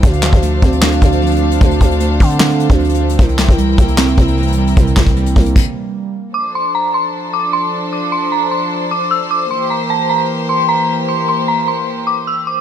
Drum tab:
CC |--------------------------------|--------------------------------|--------------------------------|----------------x---------------|
HH |x-x---x-x---x-x---x-x-x-xxxx--x-|x-x-x-x-x---o-x---x-x-x-xxxx--x-|x-x---x-x---x-x---x-x-x-xxxx--x-|x-x---x-x-x-o-x-----------------|
CP |----x-----------x---------------|----------------x---------------|----x-----------x---------------|----x---------------------------|
SD |----o-----------o---------------|----------------o---------------|----o-----------o---------------|----o---------------------------|
BD |o-----o-----o-------o-----------|o---o-------o---------o---------|o-----o-----o-------o-----------|o---o-o-----o---o---------------|

CC |--------------------------------|--------------------------------|--------------------------------|--------------------------------|
HH |--------------------------------|--------------------------------|--------------------------------|--------------------------------|
CP |--------------------------------|--------------------------------|--------------------------------|--------------------------------|
SD |--------------------------------|--------------------------------|--------------------------------|--------------------------------|
BD |--------------------------------|--------------------------------|--------------------------------|--------------------------------|